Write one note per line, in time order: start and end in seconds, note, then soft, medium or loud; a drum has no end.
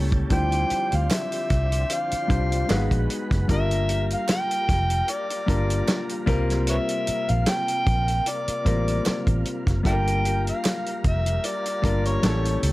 0.00 0.24 C#2 medium
0.00 0.15 G3 medium
0.00 0.15 A#3 medium
0.00 0.16 C#4 medium
0.00 0.30 C#4 medium
0.00 0.16 E4 medium
0.00 2.67 G4 medium
0.00 0.17 A4 medium
0.00 0.30 A4 medium
0.12 kick loud
0.12 closed hi-hat medium
0.30 0.63 D2 loud
0.30 2.67 D3 medium
0.30 2.67 F3 medium
0.30 1.31 G3 medium
0.30 2.67 C4 medium
0.30 1.31 D4 medium
0.30 2.67 D4 medium
0.30 1.32 E4 medium
0.30 1.32 F4 medium
0.30 1.32 C5 medium
0.30 0.97 G5 loud
0.30 kick loud
0.30 closed hi-hat medium
0.52 closed hi-hat medium
0.70 muted fingered electric bass stroke soft
0.70 closed hi-hat medium
0.92 1.07 D2 medium
0.92 1.15 F5 medium
0.92 closed hi-hat soft
1.10 1.95 E5 loud
1.10 snare loud
1.10 clap medium
1.10 closed hi-hat loud
1.32 closed hi-hat medium
1.50 1.83 C2 medium
1.50 kick medium
1.50 snare soft
1.50 closed hi-hat medium
1.72 closed hi-hat medium
1.90 3.11 F5 medium
1.90 closed hi-hat medium
2.11 muted fingered electric bass stroke soft
2.11 closed hi-hat medium
2.28 2.62 C2 loud
2.28 2.68 G3 medium
2.28 2.69 D4 medium
2.28 2.70 F4 medium
2.28 2.69 G4 medium
2.28 2.70 C5 medium
2.28 kick medium
2.28 closed hi-hat medium
2.52 closed hi-hat medium
2.69 2.87 G#1 loud
2.69 3.34 G#3 medium
2.69 3.48 G#3 medium
2.69 3.34 B3 medium
2.69 3.34 D#4 medium
2.69 3.48 F#4 medium
2.69 3.35 F#4 medium
2.69 3.48 B4 medium
2.69 3.35 B4 medium
2.69 snare loud
2.69 clap medium
2.69 closed hi-hat medium
2.91 3.06 A#1 medium
2.91 kick medium
2.91 closed hi-hat medium
3.10 closed hi-hat medium
3.31 3.46 F#1 medium
3.31 kick loud
3.31 snare soft
3.31 closed hi-hat medium
3.48 4.14 G1 loud
3.48 4.49 G3 medium
3.48 6.25 G3 medium
3.48 4.49 A#3 medium
3.48 4.50 D4 medium
3.48 9.82 F4 medium
3.48 4.50 F4 medium
3.48 6.25 A#4 medium
3.48 4.50 A#4 medium
3.48 kick loud
3.48 closed hi-hat medium
3.52 4.08 E5 loud
3.71 closed hi-hat medium
3.89 closed hi-hat medium
4.10 4.29 F5 medium
4.10 closed hi-hat soft
4.28 5.13 G5 loud
4.28 snare loud
4.28 clap medium
4.28 closed hi-hat loud
4.51 closed hi-hat medium
4.69 5.01 F1 medium
4.69 kick medium
4.69 snare soft
4.69 closed hi-hat medium
4.90 closed hi-hat medium
5.08 6.29 D5 medium
5.08 closed hi-hat medium
5.30 closed hi-hat medium
5.46 5.81 G1 medium
5.46 6.22 G3 medium
5.46 6.22 A#3 medium
5.46 6.23 D4 medium
5.46 6.23 F4 medium
5.46 6.23 A#4 medium
5.46 kick medium
5.46 closed hi-hat medium
5.70 closed hi-hat medium
5.88 snare loud
5.88 clap medium
5.88 closed hi-hat medium
6.09 closed hi-hat medium
6.26 6.78 C2 loud
6.26 9.82 C3 medium
6.26 7.55 G3 loud
6.26 7.55 A#3 medium
6.26 9.82 A#3 medium
6.26 7.55 C4 medium
6.26 7.55 F4 medium
6.26 7.56 A#4 loud
6.26 kick loud
6.26 closed hi-hat medium
6.50 snare soft
6.50 closed hi-hat soft
6.67 6.76 B4 medium
6.67 6.77 C#5 medium
6.67 7.32 E5 loud
6.67 closed hi-hat medium
6.89 closed hi-hat medium
7.07 muted fingered electric bass stroke soft
7.07 closed hi-hat medium
7.29 7.44 A#1 medium
7.29 7.51 F5 loud
7.29 closed hi-hat medium
7.46 8.31 G5 loud
7.46 snare loud
7.46 clap medium
7.46 closed hi-hat loud
7.68 closed hi-hat medium
7.86 8.19 A#1 medium
7.86 kick loud
7.86 closed hi-hat medium
8.08 closed hi-hat medium
8.26 9.47 D5 medium
8.26 closed hi-hat medium
8.48 muted fingered electric bass stroke soft
8.48 closed hi-hat medium
8.65 8.99 A1 medium
8.65 9.40 G3 medium
8.65 9.40 A#3 medium
8.65 9.41 C4 medium
8.65 9.41 F4 medium
8.65 9.41 A#4 medium
8.65 kick medium
8.65 closed hi-hat medium
8.88 closed hi-hat medium
9.06 muted fingered electric bass stroke medium
9.06 snare loud
9.06 clap medium
9.06 closed hi-hat medium
9.27 9.42 A1 medium
9.27 kick medium
9.27 closed hi-hat medium
9.45 closed hi-hat medium
9.67 9.82 F#1 medium
9.67 kick loud
9.67 snare soft
9.67 closed hi-hat medium
9.83 10.50 G1 loud
9.83 10.85 G3 medium
9.83 12.22 G3 medium
9.83 10.85 A#3 medium
9.83 10.86 D4 medium
9.83 10.86 F4 medium
9.83 12.21 F4 medium
9.83 9.92 A4 medium
9.83 12.21 A#4 medium
9.83 9.94 D5 medium
9.83 9.94 E5 medium
9.83 10.43 G5 loud
9.83 kick loud
9.83 closed hi-hat medium
9.92 10.89 A#4 medium
10.07 closed hi-hat medium
10.25 closed hi-hat medium
10.47 11.02 F5 loud
10.47 closed hi-hat medium
10.64 snare loud
10.64 clap medium
10.64 closed hi-hat loud
10.86 closed hi-hat medium
11.04 11.37 F1 medium
11.04 11.48 E5 loud
11.04 kick loud
11.04 closed hi-hat medium
11.26 closed hi-hat medium
11.44 12.09 D5 loud
11.44 closed hi-hat medium
11.66 closed hi-hat medium
11.82 12.17 G1 loud
11.82 12.21 G3 medium
11.82 12.21 A#3 medium
11.82 12.24 D4 medium
11.82 12.24 F4 medium
11.82 12.24 A#4 medium
11.82 kick medium
11.82 closed hi-hat medium
12.05 12.65 C#5 medium
12.05 closed hi-hat medium
12.22 12.56 A1 loud
12.22 12.72 G3 medium
12.22 12.72 A#3 medium
12.22 12.72 C#4 medium
12.22 12.72 E4 medium
12.22 12.72 G4 medium
12.22 12.72 A4 medium
12.22 snare loud
12.22 clap medium
12.22 closed hi-hat medium
12.45 closed hi-hat medium
12.63 12.72 C#2 medium
12.63 closed hi-hat medium